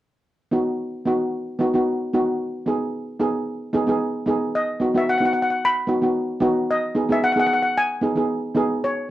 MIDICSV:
0, 0, Header, 1, 3, 480
1, 0, Start_track
1, 0, Key_signature, 5, "major"
1, 0, Tempo, 535714
1, 237, Time_signature, 4, 2, 24, 8
1, 8156, End_track
2, 0, Start_track
2, 0, Title_t, "Steel pan"
2, 0, Program_c, 0, 114
2, 4079, Note_on_c, 0, 75, 70
2, 4455, Note_off_c, 0, 75, 0
2, 4458, Note_on_c, 0, 76, 67
2, 4564, Note_on_c, 0, 78, 73
2, 4566, Note_off_c, 0, 76, 0
2, 4627, Note_off_c, 0, 78, 0
2, 4642, Note_on_c, 0, 78, 56
2, 4697, Note_off_c, 0, 78, 0
2, 4708, Note_on_c, 0, 78, 67
2, 4762, Note_off_c, 0, 78, 0
2, 4778, Note_on_c, 0, 78, 57
2, 4833, Note_off_c, 0, 78, 0
2, 4860, Note_on_c, 0, 78, 61
2, 4912, Note_off_c, 0, 78, 0
2, 4931, Note_on_c, 0, 78, 51
2, 4979, Note_off_c, 0, 78, 0
2, 5062, Note_on_c, 0, 83, 86
2, 5733, Note_off_c, 0, 83, 0
2, 6008, Note_on_c, 0, 75, 70
2, 6380, Note_off_c, 0, 75, 0
2, 6382, Note_on_c, 0, 76, 70
2, 6429, Note_off_c, 0, 76, 0
2, 6484, Note_on_c, 0, 78, 79
2, 6552, Note_off_c, 0, 78, 0
2, 6562, Note_on_c, 0, 78, 55
2, 6616, Note_off_c, 0, 78, 0
2, 6627, Note_on_c, 0, 78, 70
2, 6680, Note_off_c, 0, 78, 0
2, 6691, Note_on_c, 0, 78, 63
2, 6740, Note_off_c, 0, 78, 0
2, 6751, Note_on_c, 0, 78, 65
2, 6821, Note_off_c, 0, 78, 0
2, 6832, Note_on_c, 0, 78, 59
2, 6894, Note_off_c, 0, 78, 0
2, 6967, Note_on_c, 0, 80, 93
2, 7646, Note_off_c, 0, 80, 0
2, 7921, Note_on_c, 0, 73, 70
2, 8156, Note_off_c, 0, 73, 0
2, 8156, End_track
3, 0, Start_track
3, 0, Title_t, "Steel pan"
3, 0, Program_c, 1, 114
3, 461, Note_on_c, 1, 59, 67
3, 468, Note_on_c, 1, 63, 61
3, 472, Note_on_c, 1, 66, 70
3, 759, Note_off_c, 1, 59, 0
3, 763, Note_off_c, 1, 63, 0
3, 765, Note_off_c, 1, 66, 0
3, 945, Note_on_c, 1, 59, 69
3, 953, Note_on_c, 1, 63, 63
3, 961, Note_on_c, 1, 66, 74
3, 1241, Note_off_c, 1, 59, 0
3, 1245, Note_off_c, 1, 63, 0
3, 1249, Note_off_c, 1, 66, 0
3, 1424, Note_on_c, 1, 59, 71
3, 1436, Note_on_c, 1, 63, 63
3, 1440, Note_on_c, 1, 66, 72
3, 1506, Note_off_c, 1, 59, 0
3, 1512, Note_off_c, 1, 63, 0
3, 1514, Note_off_c, 1, 66, 0
3, 1556, Note_on_c, 1, 59, 65
3, 1566, Note_on_c, 1, 63, 59
3, 1569, Note_on_c, 1, 66, 74
3, 1774, Note_off_c, 1, 59, 0
3, 1779, Note_off_c, 1, 63, 0
3, 1781, Note_off_c, 1, 66, 0
3, 1912, Note_on_c, 1, 59, 65
3, 1918, Note_on_c, 1, 63, 62
3, 1921, Note_on_c, 1, 66, 82
3, 2154, Note_off_c, 1, 59, 0
3, 2157, Note_off_c, 1, 63, 0
3, 2159, Note_off_c, 1, 66, 0
3, 2385, Note_on_c, 1, 59, 66
3, 2394, Note_on_c, 1, 63, 60
3, 2399, Note_on_c, 1, 68, 74
3, 2681, Note_off_c, 1, 59, 0
3, 2685, Note_off_c, 1, 63, 0
3, 2688, Note_off_c, 1, 68, 0
3, 2863, Note_on_c, 1, 59, 69
3, 2867, Note_on_c, 1, 63, 62
3, 2873, Note_on_c, 1, 68, 81
3, 3160, Note_off_c, 1, 59, 0
3, 3162, Note_off_c, 1, 63, 0
3, 3165, Note_off_c, 1, 68, 0
3, 3343, Note_on_c, 1, 59, 74
3, 3345, Note_on_c, 1, 63, 68
3, 3355, Note_on_c, 1, 68, 80
3, 3425, Note_off_c, 1, 59, 0
3, 3426, Note_off_c, 1, 63, 0
3, 3432, Note_off_c, 1, 68, 0
3, 3465, Note_on_c, 1, 59, 69
3, 3476, Note_on_c, 1, 63, 62
3, 3485, Note_on_c, 1, 68, 79
3, 3688, Note_off_c, 1, 59, 0
3, 3694, Note_off_c, 1, 63, 0
3, 3698, Note_off_c, 1, 68, 0
3, 3816, Note_on_c, 1, 59, 68
3, 3827, Note_on_c, 1, 63, 66
3, 3835, Note_on_c, 1, 68, 81
3, 4066, Note_off_c, 1, 59, 0
3, 4072, Note_off_c, 1, 63, 0
3, 4075, Note_off_c, 1, 68, 0
3, 4300, Note_on_c, 1, 59, 63
3, 4309, Note_on_c, 1, 63, 55
3, 4315, Note_on_c, 1, 66, 70
3, 4384, Note_off_c, 1, 59, 0
3, 4388, Note_off_c, 1, 63, 0
3, 4391, Note_off_c, 1, 66, 0
3, 4430, Note_on_c, 1, 59, 68
3, 4436, Note_on_c, 1, 63, 56
3, 4440, Note_on_c, 1, 66, 70
3, 4575, Note_off_c, 1, 59, 0
3, 4578, Note_off_c, 1, 63, 0
3, 4580, Note_off_c, 1, 66, 0
3, 4664, Note_on_c, 1, 59, 62
3, 4669, Note_on_c, 1, 63, 57
3, 4677, Note_on_c, 1, 66, 65
3, 5026, Note_off_c, 1, 59, 0
3, 5029, Note_off_c, 1, 63, 0
3, 5033, Note_off_c, 1, 66, 0
3, 5260, Note_on_c, 1, 59, 64
3, 5269, Note_on_c, 1, 63, 60
3, 5274, Note_on_c, 1, 66, 72
3, 5344, Note_off_c, 1, 59, 0
3, 5349, Note_off_c, 1, 63, 0
3, 5351, Note_off_c, 1, 66, 0
3, 5391, Note_on_c, 1, 59, 62
3, 5397, Note_on_c, 1, 63, 58
3, 5407, Note_on_c, 1, 66, 64
3, 5612, Note_off_c, 1, 59, 0
3, 5615, Note_off_c, 1, 63, 0
3, 5619, Note_off_c, 1, 66, 0
3, 5737, Note_on_c, 1, 59, 78
3, 5748, Note_on_c, 1, 63, 72
3, 5752, Note_on_c, 1, 66, 84
3, 5987, Note_off_c, 1, 59, 0
3, 5992, Note_off_c, 1, 63, 0
3, 5994, Note_off_c, 1, 66, 0
3, 6226, Note_on_c, 1, 59, 64
3, 6230, Note_on_c, 1, 63, 61
3, 6236, Note_on_c, 1, 68, 70
3, 6307, Note_off_c, 1, 59, 0
3, 6309, Note_off_c, 1, 63, 0
3, 6312, Note_off_c, 1, 68, 0
3, 6352, Note_on_c, 1, 59, 65
3, 6361, Note_on_c, 1, 63, 58
3, 6366, Note_on_c, 1, 68, 70
3, 6496, Note_off_c, 1, 59, 0
3, 6500, Note_off_c, 1, 63, 0
3, 6503, Note_off_c, 1, 68, 0
3, 6591, Note_on_c, 1, 59, 60
3, 6597, Note_on_c, 1, 63, 55
3, 6601, Note_on_c, 1, 68, 70
3, 6950, Note_off_c, 1, 59, 0
3, 6953, Note_off_c, 1, 63, 0
3, 6955, Note_off_c, 1, 68, 0
3, 7180, Note_on_c, 1, 59, 64
3, 7189, Note_on_c, 1, 63, 63
3, 7195, Note_on_c, 1, 68, 69
3, 7264, Note_off_c, 1, 59, 0
3, 7269, Note_off_c, 1, 63, 0
3, 7272, Note_off_c, 1, 68, 0
3, 7308, Note_on_c, 1, 59, 64
3, 7316, Note_on_c, 1, 63, 56
3, 7324, Note_on_c, 1, 68, 69
3, 7531, Note_off_c, 1, 59, 0
3, 7534, Note_off_c, 1, 63, 0
3, 7538, Note_off_c, 1, 68, 0
3, 7659, Note_on_c, 1, 59, 77
3, 7664, Note_on_c, 1, 63, 71
3, 7677, Note_on_c, 1, 68, 83
3, 7908, Note_off_c, 1, 59, 0
3, 7911, Note_off_c, 1, 63, 0
3, 7917, Note_off_c, 1, 68, 0
3, 8156, End_track
0, 0, End_of_file